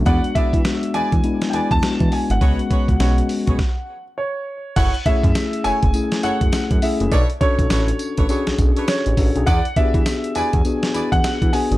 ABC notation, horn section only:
X:1
M:4/4
L:1/16
Q:"Swing 16ths" 1/4=102
K:F#m
V:1 name="Horn section"
[EGBd] z [EGBd] z3 [EGBd] z3 [EGBd] z4 z | [FGBc] z [FGBc] z [FGBc] z2 [FGBc] z8 | [EFAc] z [EFAc] z3 [EFAc] z3 [EFAc] z4 z | [DABc] z [DABc] z [DABc] z2 [DABc] [DABc] z2 [DABc] z4 |
[EGBd] z [EGBd] z3 [EGBd] z3 [EGBd] z4 z |]